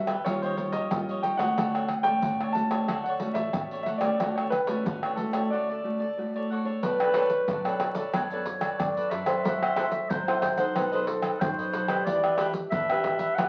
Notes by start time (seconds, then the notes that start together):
Already playing: D2 B2 G3 D4 F#4 E5
0.07 G4 B4 E5, pandeiro, tamborim, shaker, surdo
0.24 D#2 D#3 G3 C#4 D#4 F4 G4 C#5, pandeiro, tamborim, shaker, surdo
0.29 C#5 D#5
0.42 G4 C5 C#5 D#5, pandeiro, shaker
0.57 G3 C#4 F4 C#5, pandeiro, surdo
0.72 A#1 G4 C#5 D#5, pandeiro, shaker
0.91 A#1 A#2 G3 C#4 F4, pandeiro, tamborim, shaker, surdo
1.09 G4 C#5 D#5, pandeiro, shaker
1.23 D#4 G4 C#5 D#5 G5, pandeiro, shaker, surdo
1.37 D#2 A3 C#4 F#4 G4 C#5 D#5 F#5, pandeiro, tamborim, shaker, surdo
1.57 D2 D3 F#4 A4 C#5 D5, pandeiro, tamborim, shaker, surdo
1.74 A4 C#5 D5, pandeiro, tamborim, shaker
1.88 pandeiro, tamborim
2.03 A1 A3 C#4 A4 C#5 D5 G5, pandeiro, shaker, surdo
2.22 D2 A2 F#4 A4 C#5 D5, pandeiro, shaker, surdo
2.41 A4 C#5 D5, pandeiro, tamborim, shaker
2.53 A3 C#4 F#4 A5, muted cavaquinho stroke, pandeiro
2.71 A4 C#5 D5, pandeiro, tamborim, shaker, surdo
2.88 D2 D3 F#4 A4 C#5 D5, pandeiro, tamborim, shaker, surdo
3.04 F#5, pandeiro, shaker
3.08 A4 C#5 D5
3.20 A3 C#4 F#4, pandeiro, shaker, surdo
3.34 A1 A4 C#5 D5 E5, pandeiro, shaker
3.53 A2 A3 C#4 F#4, pandeiro, tamborim, shaker, surdo
3.71 A4 C#5 D5, pandeiro, shaker
3.83 F#4 E5, pandeiro, surdo
3.87 A4 C#5 D5
3.98 D2 D5, pandeiro, tamborim, shaker, surdo
4.02 A3 C#4 F#4 A4 C#5 D5
4.20 D2 D3 A3 C#4 F#4 A4 C#5, pandeiro, tamborim, shaker, surdo
4.25 D5
4.36 C#5 D5, pandeiro, tamborim, shaker
4.40 A4 C#5
4.50 B4, muted cavaquinho stroke, pandeiro, tamborim, shaker
4.67 A1 A3 C#4 F#4 A4 C#5 D5, pandeiro, shaker, surdo
4.85 D2 A2 F#4 A4 C#5 D5, pandeiro, shaker, surdo
5.03 A4 C#5 D5, pandeiro, tamborim, shaker
5.16 A3 C#4 F#4 A4, muted cavaquinho stroke, pandeiro
5.33 A4 C#5 D5, pandeiro, tamborim, shaker, surdo
5.50 D3 F#4 A4 C#5 D5
5.70 A4 D5
5.84 A3 C#4 F#4
6.00 A4 D5
6.17 A2 A3 F#4
6.36 A4 C#5 D5
6.51 F#4 A4 C#5 D5
6.65 D4 A4 C#5 D5
6.83 B1 B3 D4 A4 B4 D5, pandeiro, shaker, surdo
7.00 A4 B4 D5, pandeiro, tamborim, shaker
7.14 D4 A4 B4 C#5 D5, pandeiro, tamborim
7.29 muted cavaquinho stroke, pandeiro, shaker
7.48 B1 F#3 D4 A4 B4 D5, pandeiro, shaker, surdo
7.65 D4 A4 B4 C#5 D5, pandeiro, tamborim, shaker
7.80 pandeiro, tamborim
7.95 D4 A4 B4 C#5 D5, pandeiro, shaker
8.14 F#2 B3 D4 A4 B4 C#5 D5, pandeiro, tamborim, shaker, surdo
8.31 D4 A4 B4 C#5 D5, pandeiro, shaker
8.46 muted cavaquinho stroke, pandeiro
8.61 A4 B4 D5, pandeiro, tamborim, shaker
8.79 F#2 F#3 D4 A4 D5, pandeiro, tamborim, shaker, surdo
8.97 A4 B4 D5, pandeiro, shaker
9.10 F#2 D4 A4 B4 D5 E5, pandeiro, shaker
9.26 E4 A4 B4 C5 D5, pandeiro, tamborim, shaker
9.44 F#1 F#3 E4 A4 C5 F#5, pandeiro, shaker, surdo
9.62 A4 C5 F#5, pandeiro, tamborim, shaker
9.76 E4 A4 C5 F#5, pandeiro, tamborim, shaker
9.92 muted cavaquinho stroke, pandeiro, shaker
10.09 A#1 F#3 E4 A4 C5 F#5, pandeiro, shaker, surdo
10.27 E4 A4 C5 F#5, pandeiro, tamborim, shaker
10.41 C5, pandeiro, tamborim, shaker, surdo
10.57 D#4 A4 C5 F#5, pandeiro, shaker
10.75 B1 B3 D#4 A4 B4 D#5, pandeiro, tamborim, shaker, surdo
10.92 D#4 A4 B4 C5 D#5, pandeiro, shaker
11.07 A4, muted cavaquinho stroke, pandeiro
11.22 A4 B4 D#5, pandeiro, tamborim, shaker
11.40 F#2 F#3 D#4 A4 C5, pandeiro, tamborim, shaker, surdo
11.58 A4 B4 D#5, pandeiro, shaker
11.73 B1 D#4 A4 B4 D#5, pandeiro, shaker
11.88 D4 G4 A4 B4 D#5, pandeiro, tamborim, shaker
12.05 E2 E3 D4 G4 B4 D5, pandeiro, shaker, surdo
12.09 E5
12.24 G4 B4 E5, pandeiro, tamborim, shaker
12.38 D4 G4 B4 E5, pandeiro, tamborim, shaker
12.53 muted cavaquinho stroke, pandeiro, shaker
12.71 E2 B2 D4 G4 B4 E5, pandeiro, shaker, surdo
12.75 E5
12.90 D4 G4 B4 E5, pandeiro, tamborim, shaker
13.04 pandeiro, tamborim, surdo
13.19 G4 B4 E5, pandeiro, shaker
13.35 B1 D4 G4 B4 F#5, pandeiro, tamborim, shaker, surdo
13.39 E3 D4 G4 B4 E5